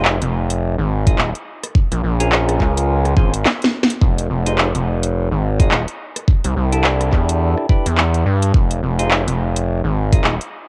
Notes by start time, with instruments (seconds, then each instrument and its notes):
Already playing: analog synth bass F1, tonewheel organ D#4 F4 G#4 C5
0.05 clap
0.22 analog synth bass F1, closed hi-hat
0.50 closed hi-hat
0.78 analog synth bass G#1
1.07 tonewheel organ D#4 F4 G#4 D#5, kick, closed hi-hat
1.18 analog synth bass D#1, clap
1.35 closed hi-hat
1.64 cross-stick, closed hi-hat
1.75 kick
1.92 analog synth bass A#1, closed hi-hat
2.04 analog synth bass A#1
2.20 tonewheel organ C#4 F4 G#4 A#4, closed hi-hat
2.32 clap
2.49 cross-stick, closed hi-hat
2.60 analog synth bass C#2, kick, clap
2.77 closed hi-hat
3.05 cross-stick, closed hi-hat
3.17 analog synth bass G#1, tonewheel organ C#4 F4 G#4 C5, kick
3.34 closed hi-hat
3.46 snare, clap
3.62 snare, closed hi-hat
3.83 snare
3.90 closed hi-hat
4.02 analog synth bass F1, kick
4.18 closed hi-hat
4.30 analog synth bass F1
4.46 tonewheel organ D#4 F4 G#4 C5, closed hi-hat
4.58 clap
4.75 analog synth bass F1, closed hi-hat
5.03 closed hi-hat
5.31 analog synth bass G#1
5.60 tonewheel organ D#4 F4 G#4 D#5, kick, closed hi-hat
5.71 analog synth bass D#1, clap
5.88 closed hi-hat
6.16 cross-stick, closed hi-hat
6.28 kick
6.44 analog synth bass C2, closed hi-hat
6.56 analog synth bass C2
6.73 tonewheel organ D4 E4 G4 A4, closed hi-hat
6.84 clap
7.01 cross-stick, closed hi-hat
7.13 analog synth bass E2, kick, clap
7.29 closed hi-hat
7.57 cross-stick
7.69 tonewheel organ D4 E4 G4 B4, kick
7.86 analog synth bass E2, closed hi-hat
7.98 clap
8.14 closed hi-hat
8.26 analog synth bass G2
8.42 closed hi-hat
8.54 analog synth bass F1, kick
8.71 closed hi-hat
8.83 analog synth bass F1
8.99 tonewheel organ D#4 F4 G#4 C5, closed hi-hat
9.11 clap
9.27 analog synth bass F1, closed hi-hat
9.56 closed hi-hat
9.84 analog synth bass G#1
10.12 tonewheel organ D#4 F4 G#4 D#5, kick, closed hi-hat
10.24 analog synth bass D#1, clap
10.41 closed hi-hat